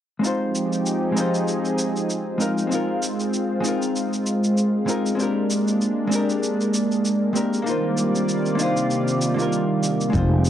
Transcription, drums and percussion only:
0.24 cabasa
0.55 cabasa
0.73 cabasa
0.86 cabasa
1.17 cabasa
1.34 cabasa
1.48 cabasa
1.65 cabasa
1.78 cabasa
1.96 cabasa
2.10 cabasa
2.40 cabasa
2.58 cabasa
2.71 cabasa
3.02 cabasa
3.20 cabasa
3.33 cabasa
3.64 cabasa
3.82 cabasa
3.96 cabasa
4.13 cabasa
4.26 cabasa
4.44 cabasa
4.57 cabasa
4.88 cabasa
5.06 cabasa
5.20 cabasa
5.50 cabasa
5.68 cabasa
5.81 cabasa
6.12 cabasa
6.30 cabasa
6.43 cabasa
6.61 cabasa
6.74 cabasa
6.92 cabasa
7.05 cabasa
7.36 cabasa
7.53 cabasa
7.67 cabasa
7.97 cabasa
8.15 cabasa
8.29 cabasa
8.46 cabasa
8.59 cabasa
8.77 cabasa
8.90 cabasa
9.08 cabasa
9.21 cabasa
9.39 cabasa
9.52 cabasa
9.83 cabasa
10.01 cabasa
10.13 kick, cabasa
10.45 cabasa

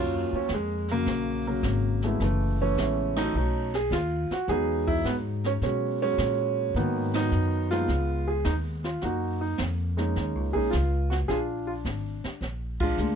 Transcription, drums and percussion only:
0.48 snare, hi-hat pedal
0.88 snare
1.06 brush sweep, snare
1.62 snare, hi-hat pedal
2.02 snare
2.20 brush sweep, snare
2.78 snare, hi-hat pedal
3.16 snare, ride
3.35 brush sweep
3.74 snare
3.91 snare, hi-hat pedal
4.31 snare
4.48 brush sweep, snare
4.88 kick
5.05 snare, hi-hat pedal
5.44 snare
5.62 brush sweep, snare
6.18 snare, hi-hat pedal
6.76 brush sweep, snare
7.13 snare, ride
7.32 hi-hat pedal
7.71 snare
7.88 brush sweep, snare
8.44 snare, hi-hat pedal
8.84 snare
9.01 brush sweep, snare
9.57 snare, hi-hat pedal
9.98 snare
10.16 brush sweep, snare
10.72 snare, hi-hat pedal
11.12 snare
11.29 brush sweep, snare
11.85 snare, hi-hat pedal
12.24 snare
12.42 brush sweep, snare
12.80 kick, ride
12.98 hi-hat pedal

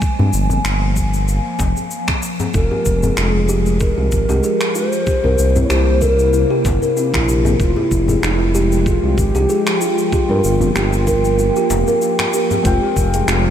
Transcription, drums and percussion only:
0.02 kick, shaker
0.19 djembe tone, djembe bass
0.33 shaker
0.50 djembe bass, shaker
0.65 finger snap, shaker
0.96 kick, shaker
1.14 shaker
1.28 shaker
1.59 kick, djembe slap, shaker
1.76 djembe tone, shaker
1.91 shaker
2.08 finger snap, kick, djembe slap, shaker
2.22 shaker
2.40 djembe tone, shaker
2.54 kick, shaker
2.71 djembe tone
2.86 kick, shaker
3.03 djembe bass, shaker
3.17 finger snap, shaker
3.49 shaker
3.66 shaker
3.80 kick, shaker
4.12 kick, shaker
4.29 djembe slap, djembe tone, shaker
4.44 shaker
4.61 finger snap, shaker
4.75 shaker
4.93 shaker
5.07 kick, shaker
5.24 djembe tone
5.38 shaker
5.56 djembe bass, shaker
5.70 finger snap, shaker
6.02 kick, shaker
6.19 shaker
6.34 shaker
6.65 kick, djembe slap, shaker
6.82 djembe tone, shaker
6.97 shaker
7.14 finger snap, kick, djembe slap, shaker
7.29 shaker
7.45 djembe tone, shaker
7.60 kick, shaker
7.76 djembe tone
7.91 kick, shaker
8.08 djembe bass, shaker
8.23 finger snap, shaker
8.55 shaker
8.72 shaker
8.86 kick, shaker
9.18 kick, shaker
9.35 djembe slap, djembe tone, shaker
9.50 shaker
9.67 finger snap, shaker
9.81 shaker
9.98 shaker
10.12 kick, shaker
10.29 djembe tone
10.44 shaker
10.61 djembe bass, shaker
10.76 finger snap, djembe slap, shaker
10.93 shaker
11.07 kick, shaker
11.25 shaker
11.39 shaker
11.56 shaker
11.70 djembe slap, shaker
11.88 djembe tone, shaker
12.02 shaker
12.19 finger snap, djembe slap, shaker
12.33 shaker
12.51 djembe tone, shaker
12.65 kick, closed hi-hat, shaker
12.97 kick, shaker
13.14 closed hi-hat, shaker
13.28 finger snap, closed hi-hat, shaker

